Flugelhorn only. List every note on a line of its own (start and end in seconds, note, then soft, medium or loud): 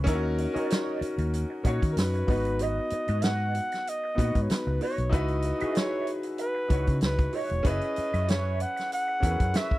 1.92 2.00 A#4 medium
1.99 2.64 B4 medium
2.62 3.26 D#5 medium
3.24 3.90 F#5 loud
3.89 4.44 D#5 loud
4.43 4.52 C#5 medium
4.51 4.82 B4 medium
4.83 5.16 C#5 medium
5.14 5.79 D#5 medium
5.78 6.13 C#5 loud
6.41 6.99 B4 loud
7.05 7.38 B4 medium
7.36 7.70 C#5 medium
7.68 8.31 D#5 loud
8.30 8.64 C#5 medium
8.62 8.92 F#5 medium
8.94 9.59 F#5 loud
9.57 9.79 E5 loud